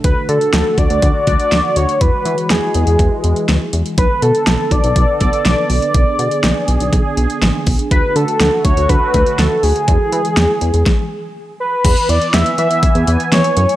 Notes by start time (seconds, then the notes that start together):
Already playing: A3
0.04 D2 D3 F#4 B4, kick, closed hi-hat
0.29 D3 A4, closed hi-hat
0.41 closed hi-hat
0.53 D2, snare, closed hi-hat
0.78 D2 D5, kick, closed hi-hat
0.90 D2, closed hi-hat
1.02 D2, kick, closed hi-hat
1.27 D2 D5, kick, closed hi-hat
1.40 closed hi-hat
1.52 D2, snare, closed hi-hat
1.76 D2 C#5, closed hi-hat
1.89 closed hi-hat
2.01 E2 E3 G#3 B4, kick, closed hi-hat
2.25 E3, closed hi-hat
2.38 closed hi-hat
2.50 E2 G#4, snare, closed hi-hat
2.74 E2, closed hi-hat
2.87 E2, closed hi-hat
2.99 E2, kick, closed hi-hat
3.24 E2, closed hi-hat
3.36 closed hi-hat
3.49 D2, snare, closed hi-hat
3.73 E2, closed hi-hat
3.86 closed hi-hat
3.98 B1 D3 B3 A4 B4, kick, closed hi-hat
4.22 B2 A4, closed hi-hat
4.35 closed hi-hat
4.47 B1, snare, closed hi-hat
4.71 B1 D5, kick, closed hi-hat
4.84 B1, closed hi-hat
4.96 B1, kick, closed hi-hat
5.21 B1 D5, kick, closed hi-hat
5.33 closed hi-hat
5.45 B1 D5, snare, closed hi-hat
5.70 B1 D5, open hi-hat
5.82 closed hi-hat
5.94 B1 G#4, kick, closed hi-hat
6.19 B2, closed hi-hat
6.31 closed hi-hat
6.44 B1, snare, closed hi-hat
6.68 B1, closed hi-hat
6.80 B1, closed hi-hat
6.93 B1, kick, closed hi-hat
7.17 B1, closed hi-hat
7.30 closed hi-hat
7.42 A1, snare, closed hi-hat
7.67 B1, kick, open hi-hat
7.79 closed hi-hat
7.91 D2 A3 F#4 B4, kick, closed hi-hat
8.16 D3 A4, closed hi-hat
8.28 closed hi-hat
8.40 D2, snare, closed hi-hat
8.65 D2 C#5, kick, closed hi-hat
8.77 D2, closed hi-hat
8.89 D2 B4, kick, closed hi-hat
9.14 D2, kick, closed hi-hat
9.26 closed hi-hat
9.38 D2 A4, snare, closed hi-hat
9.63 D2 G#4, open hi-hat
9.76 closed hi-hat
9.88 E2 E3 G#3, kick, closed hi-hat
10.12 E3, closed hi-hat
10.25 closed hi-hat
10.37 E2, snare, closed hi-hat
10.61 E2, closed hi-hat
10.74 E2, closed hi-hat
10.86 kick, snare
11.60 B4
11.85 E2 E3 B3 G#5, kick, closed hi-hat, crash
11.97 closed hi-hat
12.09 E2 D5, closed hi-hat
12.22 closed hi-hat
12.34 E2 E5, snare, closed hi-hat
12.46 closed hi-hat
12.58 E3 E5, closed hi-hat
12.71 closed hi-hat
12.83 kick, closed hi-hat
12.95 E2, closed hi-hat
13.07 E2, closed hi-hat
13.20 closed hi-hat
13.32 E2 C#5, snare, closed hi-hat
13.44 closed hi-hat
13.57 F#2 F#3 A3, closed hi-hat
13.69 closed hi-hat